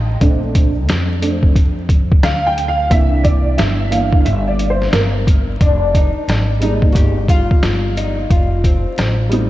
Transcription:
Already playing: upright bass A1, grand piano D#5
0.20 upright bass A#1, grand piano A3 C4 D4, kick, closed hi-hat
0.55 kick, closed hi-hat
0.89 upright bass F2, snare, closed hi-hat
1.22 grand piano A3 C4 D4, closed hi-hat
1.43 kick
1.55 upright bass F2, kick, closed hi-hat
1.89 kick, closed hi-hat
2.12 kick
2.23 upright bass D2, grand piano F5, snare, closed hi-hat
2.47 grand piano G5
2.58 closed hi-hat
2.68 grand piano F5
2.90 upright bass C2, grand piano E3 A#3 D4 E5, kick, closed hi-hat
3.24 grand piano D5, kick, closed hi-hat
3.58 upright bass G1, grand piano E5, snare, closed hi-hat
3.91 grand piano E3 A#3 D4 F5, closed hi-hat
4.12 kick
4.21 grand piano F5
4.25 upright bass G1, grand piano E5, closed hi-hat
4.48 grand piano D5
4.59 closed hi-hat
4.70 grand piano C5
4.82 snare
4.93 upright bass G1, grand piano A#4, snare, closed hi-hat
5.27 kick, closed hi-hat
5.61 upright bass F1, oud D4, kick, closed hi-hat
5.95 oud D#4, kick, closed hi-hat
6.16 muted upright bass stroke
6.28 upright bass G#1, snare, closed hi-hat
6.60 grand piano G3 G#3 A#3 D#4, oud D#4, closed hi-hat
6.82 kick
6.92 upright bass G1, oud F#4 G4, kick, closed hi-hat
7.28 oud F4, kick, closed hi-hat
7.51 kick
7.63 upright bass G1, snare, closed hi-hat
7.97 oud D#4, closed hi-hat
8.30 upright bass F1, oud F4, kick, closed hi-hat
8.64 oud C4, kick, closed hi-hat
8.85 muted upright bass stroke
8.98 upright bass A1, snare, closed hi-hat
9.29 grand piano G3 A3 C4 D#4, closed hi-hat

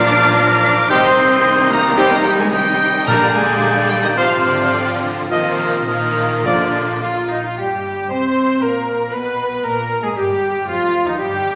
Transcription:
Already playing: double bass section A#1, viola section F3, violin section A#3 D4 D6, cello section D4, oboe A#4, clarinet D5, flute F6
0.61 cello section D4, clarinet D5, violin section D6
0.89 double bass section C2, viola section C3 D#3, violin section G3 D#4 C6, french horn section G3 D#4, cello section C4, trumpet G4, clarinet C5, oboe D#5, flute G6
1.70 cello section A#3, clarinet A#4, violin section A#5
1.97 french horn section G3 D#4, cello section C4, trumpet G4, clarinet C5, oboe D#5, violin section C6, flute G6
2.10 cello section A#3, clarinet A#4, violin section A#5
2.25 cello section G3, clarinet G4, violin section G5
2.39 cello section G#3, clarinet G#4, violin section G#5
2.52 cello section G3, clarinet G4, oboe D#5, violin section G5, flute G6
3.05 double bass section A#1, timpani A#2, viola section D3 G3, french horn section G3 D4, violin section A#3 D4 A#5, cello section A#3, trumpet A#4, clarinet A#4, oboe D5, flute G6
3.34 cello section G#3, clarinet G#4, violin section G#5
3.88 cello section G3, clarinet G4, violin section G5
4.03 cello section D#3, clarinet D#4, violin section D#5
4.16 double bass section G#1, viola section C3 F3, french horn section F3 F4, cello section F3, violin section C4 F4 F5, clarinet F4, trumpet C5, oboe C5, flute F6
4.44 cello section D3, clarinet D4, violin section D5
4.74 viola section D3
5.02 cello section C3, clarinet C4, violin section C5
5.29 double bass section A#1, cello section C3, viola section D#3 F3, french horn section F3 F4, violin section A#3 F4 C5, clarinet C4, trumpet D#5, oboe D#5, flute F6
5.87 cello section A#2, viola section D#3 F3, violin section A#3 F4 A#4, clarinet A#3, oboe D#5, flute F6
6.45 timpani A#2, viola section D3 F3, french horn section F3 F4, violin section A#3 F4, oboe D5, trumpet D5, flute F6
7.01 oboe F4, viola section F4, flute F5
7.31 viola section D#4, oboe D#4, flute D#5
7.44 oboe F4, viola section F4, flute F5
7.58 double bass section G1, cello section G2, french horn section G3, violin section G4, trumpet G4, viola section G4, oboe G4, flute G5
8.10 double bass section C2, cello section C3, french horn section C4, oboe C5, violin section C5, trumpet C5, viola section C5, flute C6
8.61 double bass section A#1, cello section A#2, french horn section A#3, oboe A#4, trumpet A#4, viola section A#4, violin section A#4, flute A#5
9.12 double bass section B1, cello section B2, french horn section B3, viola section B4, violin section B4, trumpet B4, oboe B4, flute B5
9.63 double bass section A#1, cello section A#2, french horn section A#3, oboe A#4, viola section A#4, trumpet A#4, violin section A#4, flute A#5
10.02 cello section G#2, french horn section G#3, trumpet G#4, violin section G#4, oboe G#4, viola section G#4, flute G#5
10.15 double bass section G1, cello section G2, french horn section G3, violin section G4, viola section G4, oboe G4, trumpet G4, flute G5
10.67 double bass section F1, cello section F2, french horn section F3, violin section F4, viola section F4, trumpet F4, oboe F4, flute F5
11.04 cello section D#2, french horn section D#3, violin section D#4, trumpet D#4, oboe D#4, viola section D#4, flute D#5
11.17 double bass section G1, cello section G2, french horn section G3, violin section G4, trumpet G4, oboe G4, viola section G4, flute G5

